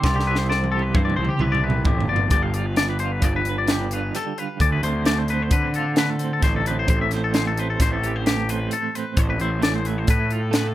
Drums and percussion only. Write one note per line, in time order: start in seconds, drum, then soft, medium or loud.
0.04 kick loud
0.04 snare medium
0.19 snare soft
0.35 snare medium
0.51 snare medium
0.64 high tom medium
0.79 high tom medium
0.94 kick loud
0.94 high tom medium
1.10 mid tom medium
1.25 mid tom medium
1.39 mid tom medium
1.55 mid tom medium
1.70 mid tom medium
1.85 kick loud
1.85 floor tom medium
2.01 floor tom medium
2.16 floor tom medium
2.30 kick loud
2.30 closed hi-hat medium
2.54 closed hi-hat medium
2.76 snare medium
2.76 closed hi-hat medium
2.99 closed hi-hat medium
3.22 kick loud
3.22 closed hi-hat medium
3.45 closed hi-hat medium
3.68 snare loud
3.68 closed hi-hat medium
3.91 closed hi-hat medium
4.15 snare soft
4.15 closed hi-hat medium
4.38 closed hi-hat medium
4.60 kick loud
4.60 closed hi-hat medium
4.83 closed hi-hat medium
5.05 snare medium
5.05 closed hi-hat medium
5.28 closed hi-hat medium
5.51 kick loud
5.51 closed hi-hat medium
5.74 closed hi-hat medium
5.96 snare loud
5.96 closed hi-hat medium
6.19 closed hi-hat medium
6.42 kick loud
6.42 snare soft
6.42 closed hi-hat medium
6.66 closed hi-hat medium
6.88 kick loud
6.88 closed hi-hat medium
7.11 snare soft
7.11 closed hi-hat medium
7.34 snare medium
7.34 closed hi-hat medium
7.57 closed hi-hat medium
7.80 kick loud
7.80 snare soft
7.80 closed hi-hat loud
8.04 closed hi-hat medium
8.26 snare loud
8.26 closed hi-hat medium
8.49 closed hi-hat medium
8.71 closed hi-hat medium
8.95 closed hi-hat medium
9.17 kick loud
9.17 closed hi-hat medium
9.40 closed hi-hat medium
9.62 snare loud
9.62 closed hi-hat medium
9.85 closed hi-hat medium
10.07 kick loud
10.07 closed hi-hat medium
10.30 closed hi-hat soft
10.53 snare loud
10.53 closed hi-hat medium